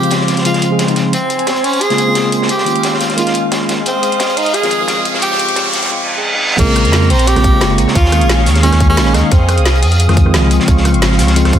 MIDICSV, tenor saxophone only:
0, 0, Header, 1, 2, 480
1, 0, Start_track
1, 0, Tempo, 340909
1, 1598, Time_signature, 4, 2, 24, 8
1, 16319, End_track
2, 0, Start_track
2, 0, Title_t, "Tenor saxophone"
2, 0, Program_c, 0, 66
2, 0, Note_on_c, 0, 67, 109
2, 351, Note_off_c, 0, 67, 0
2, 639, Note_on_c, 0, 65, 85
2, 981, Note_off_c, 0, 65, 0
2, 1597, Note_on_c, 0, 60, 91
2, 2313, Note_on_c, 0, 61, 101
2, 2334, Note_off_c, 0, 60, 0
2, 2556, Note_on_c, 0, 68, 122
2, 2577, Note_off_c, 0, 61, 0
2, 3277, Note_off_c, 0, 68, 0
2, 3519, Note_on_c, 0, 67, 106
2, 4188, Note_off_c, 0, 67, 0
2, 4479, Note_on_c, 0, 65, 95
2, 4821, Note_off_c, 0, 65, 0
2, 5449, Note_on_c, 0, 60, 97
2, 6160, Note_on_c, 0, 63, 105
2, 6181, Note_off_c, 0, 60, 0
2, 6398, Note_on_c, 0, 68, 119
2, 6419, Note_off_c, 0, 63, 0
2, 7118, Note_off_c, 0, 68, 0
2, 7356, Note_on_c, 0, 67, 110
2, 8026, Note_off_c, 0, 67, 0
2, 9279, Note_on_c, 0, 58, 100
2, 10002, Note_on_c, 0, 60, 99
2, 10023, Note_off_c, 0, 58, 0
2, 10242, Note_on_c, 0, 67, 114
2, 10263, Note_off_c, 0, 60, 0
2, 10960, Note_off_c, 0, 67, 0
2, 11198, Note_on_c, 0, 65, 105
2, 11867, Note_off_c, 0, 65, 0
2, 12149, Note_on_c, 0, 61, 99
2, 12496, Note_off_c, 0, 61, 0
2, 12524, Note_on_c, 0, 61, 95
2, 12874, Note_on_c, 0, 63, 89
2, 12895, Note_off_c, 0, 61, 0
2, 13112, Note_on_c, 0, 60, 90
2, 13133, Note_off_c, 0, 63, 0
2, 13595, Note_off_c, 0, 60, 0
2, 16319, End_track
0, 0, End_of_file